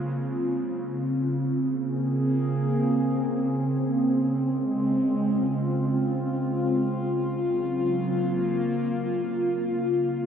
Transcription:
Already playing: C#3 G#3 C4 F4
1.38 A#3
1.48 G#4
4.32 G#3
5.05 F4
7.46 F#3
7.80 A#3
10.09 G#3

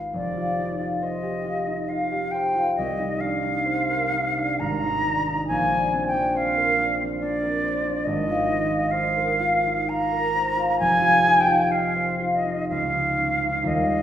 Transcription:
Already playing: G#1 F4 G#4 B4
0.13 F1 D5
0.37 F4
0.58 D#4
0.80 F4
1.02 C5 D#5
1.23 G4
1.45 F4
1.67 D#4
1.88 F4 F5
2.12 G4
2.31 C5 G5
2.55 F4
2.76 C2 D#5
2.99 D#4
3.21 D4 F5
3.42 D#4
3.65 C5
3.88 A#4
4.12 D#4
4.37 D4
4.60 G#1 A#5
4.83 D#4
5.07 D4
5.27 D#4
5.48 A#1 G#5
5.71 D4
5.91 C4
6.07 G5
6.13 D4
6.35 C5 F5
6.57 A#4
6.78 D4
7.00 C4
7.19 D4 D5
7.42 A#4
7.63 C5
7.85 D4
8.05 G#1 D#5
8.28 F4
8.49 D#4
8.70 F4
8.91 C5 F5
9.16 A#4
9.40 F4
9.66 D#4
9.89 F4 A#5
10.12 A#4
10.35 C5
10.56 F4
10.80 F1 G#5
11.02 F4
11.25 D#4
11.40 G5
11.47 F4
11.71 D#5 F5
11.96 C5
12.20 F4
12.35 D#5
12.46 D#4
12.69 C#2 F5
12.93 D#4
13.17 C#4
13.43 D#4
13.63 D#2 G3 F4 A#4
13.67 D#5

